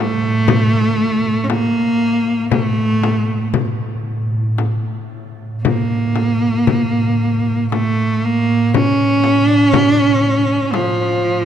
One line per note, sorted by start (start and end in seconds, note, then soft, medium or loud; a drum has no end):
0.00 5.63 A2 soft
0.00 1.45 A3 loud
0.48 frame drum medium
1.44 1.52 C#4 medium
1.50 2.50 A#3 medium
1.50 frame drum medium
2.51 3.49 A3 medium
2.51 frame drum medium
3.03 frame drum medium
3.54 frame drum medium
4.58 frame drum medium
5.63 11.45 A2 soft
5.63 7.68 A#3 medium
5.63 frame drum medium
6.16 frame drum soft
6.67 frame drum medium
7.72 8.26 A3 medium
7.72 frame drum medium
8.25 8.75 A#3 medium
8.74 9.47 C#4 loud
8.74 frame drum medium
9.24 frame drum medium
9.47 9.62 D4 loud
9.62 9.87 C#4 loud
9.73 frame drum medium
9.87 10.02 D4 loud
10.02 10.76 C#4 loud
10.74 11.45 F3 medium
10.74 frame drum medium